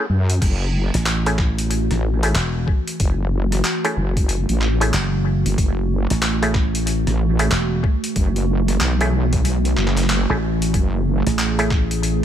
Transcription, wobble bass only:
0.10 0.40 F#2 medium
0.42 0.91 F#1 medium
1.91 2.33 A1 loud
3.00 3.63 F#1 loud
3.97 4.46 F#1 loud
4.49 4.92 A1 medium
5.45 5.56 F#1 loud
5.58 6.07 F#1 medium
7.07 7.50 A1 medium
8.16 8.79 F#1 loud
8.81 9.75 B1 loud
9.77 10.26 F#1 medium
10.74 11.23 F#1 medium

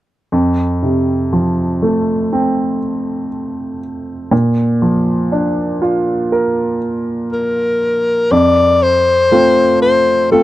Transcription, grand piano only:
0.32 4.28 F2 soft
0.83 2.78 C3 soft
1.33 3.28 F3 soft
1.82 3.78 A3 soft
2.33 4.28 C4 soft
4.31 8.28 A#2 soft
4.82 6.78 F3 soft
5.32 7.28 D4 soft
5.82 7.78 F4 soft
6.32 8.28 A#4 soft
8.31 10.43 F2 medium
9.31 10.29 A3 soft
9.31 10.29 C4 soft
9.31 10.29 F4 soft
10.32 10.43 A3 soft
10.32 10.43 C4 soft
10.32 10.43 F4 soft

